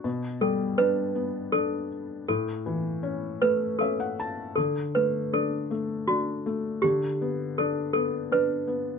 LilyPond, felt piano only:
<<
  \new Staff \with { instrumentName = "Felt piano" } { \time 3/4 \key d \major \tempo 4 = 80 r2. | r2 e''16 fis''16 a''8 | r2. | r2. | }
  \new Staff \with { instrumentName = "Felt piano" } { \time 3/4 \key d \major b,8 g8 d'8 b8 d'4 | a,8 e8 cis'8 a8 cis'4 | d8 a8 d'8 a8 d'8 a8 | d8 b8 d'8 b8 d'8 b8 | }
>>